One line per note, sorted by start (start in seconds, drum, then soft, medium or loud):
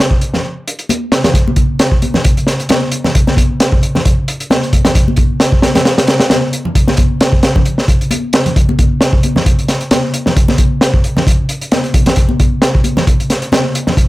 0.00 snare loud
0.11 kick medium
0.21 closed hi-hat medium
0.34 snare soft
0.34 low conga medium
0.68 closed hi-hat medium
0.79 closed hi-hat soft
0.89 closed hi-hat medium
0.89 high conga loud
1.12 snare loud
1.12 closed hi-hat medium
1.24 snare loud
1.24 closed hi-hat medium
1.24 low conga medium
1.34 kick loud
1.34 closed hi-hat medium
1.48 high conga medium
1.56 kick medium
1.56 closed hi-hat medium
1.79 snare loud
1.79 closed hi-hat medium
1.91 kick medium
2.02 closed hi-hat medium
2.02 high conga medium
2.14 snare soft
2.14 low conga medium
2.24 kick loud
2.24 closed hi-hat medium
2.37 closed hi-hat soft
2.47 snare soft
2.47 closed hi-hat medium
2.60 closed hi-hat soft
2.69 snare loud
2.69 closed hi-hat medium
2.69 high conga medium
2.92 closed hi-hat medium
3.04 snare soft
3.04 low conga medium
3.15 kick medium
3.15 closed hi-hat medium
3.27 snare soft
3.27 high conga medium
3.37 kick medium
3.37 closed hi-hat medium
3.60 snare loud
3.60 closed hi-hat medium
3.72 kick loud
3.83 closed hi-hat medium
3.95 snare soft
3.95 low conga medium
4.05 kick loud
4.05 closed hi-hat medium
4.28 closed hi-hat medium
4.40 closed hi-hat soft
4.50 snare loud
4.50 closed hi-hat medium
4.50 high conga medium
4.63 closed hi-hat soft
4.73 kick medium
4.73 closed hi-hat medium
4.85 snare medium
4.85 closed hi-hat medium
4.85 low conga medium
4.95 kick loud
4.95 closed hi-hat medium
5.08 high conga medium
5.16 kick medium
5.16 closed hi-hat medium
5.40 snare loud
5.40 closed hi-hat medium
5.52 kick loud
5.62 snare medium
5.62 closed hi-hat medium
5.62 high conga medium
5.75 snare loud
5.75 closed hi-hat medium
5.75 low conga medium
5.85 snare loud
5.85 closed hi-hat medium
5.98 snare loud
5.98 closed hi-hat medium
6.07 snare loud
6.07 closed hi-hat medium
6.20 snare loud
6.20 closed hi-hat medium
6.30 snare loud
6.30 closed hi-hat medium
6.30 high conga medium
6.53 closed hi-hat medium
6.65 low conga medium
6.75 kick loud
6.75 closed hi-hat medium
6.88 snare soft
6.88 high conga medium
6.97 kick medium
6.97 closed hi-hat medium
7.21 snare loud
7.21 closed hi-hat medium
7.33 kick medium
7.43 snare medium
7.43 closed hi-hat medium
7.56 kick medium
7.56 low conga medium
7.65 closed hi-hat medium
7.78 snare soft
7.88 kick loud
7.88 closed hi-hat medium
8.01 closed hi-hat soft
8.11 closed hi-hat medium
8.11 high conga medium
8.33 snare loud
8.33 closed hi-hat medium
8.46 closed hi-hat soft
8.46 low conga medium
8.56 kick loud
8.56 closed hi-hat medium
8.69 high conga medium
8.79 kick loud
8.79 closed hi-hat medium
9.01 snare loud
9.01 closed hi-hat medium
9.13 kick loud
9.23 closed hi-hat medium
9.23 high conga medium
9.36 snare soft
9.36 low conga medium
9.46 kick loud
9.46 closed hi-hat medium
9.59 closed hi-hat soft
9.68 snare soft
9.68 closed hi-hat medium
9.81 closed hi-hat soft
9.91 snare loud
9.91 closed hi-hat medium
9.91 high conga medium
10.14 closed hi-hat medium
10.26 snare soft
10.26 low conga medium
10.37 kick loud
10.37 closed hi-hat medium
10.48 snare soft
10.48 high conga loud
10.58 kick medium
10.58 closed hi-hat medium
10.81 snare loud
10.81 closed hi-hat medium
10.94 kick medium
11.04 closed hi-hat medium
11.17 snare soft
11.17 low conga medium
11.27 kick loud
11.27 closed hi-hat medium
11.49 closed hi-hat medium
11.61 closed hi-hat soft
11.72 snare medium
11.72 closed hi-hat medium
11.72 high conga loud
11.84 closed hi-hat soft
11.94 kick loud
11.94 closed hi-hat medium
12.06 snare loud
12.06 closed hi-hat medium
12.06 low conga medium
12.16 kick loud
12.16 closed hi-hat medium
12.29 high conga medium
12.40 kick loud
12.40 closed hi-hat medium
12.62 snare loud
12.62 closed hi-hat medium
12.75 kick medium
12.84 closed hi-hat medium
12.84 high conga medium
12.97 snare soft
12.97 low conga medium
13.07 kick medium
13.07 closed hi-hat medium
13.20 closed hi-hat soft
13.30 snare soft
13.30 closed hi-hat medium
13.42 closed hi-hat soft
13.52 snare loud
13.52 closed hi-hat medium
13.52 high conga medium
13.75 closed hi-hat medium
13.87 snare soft
13.87 low conga medium
13.97 kick loud
13.97 closed hi-hat medium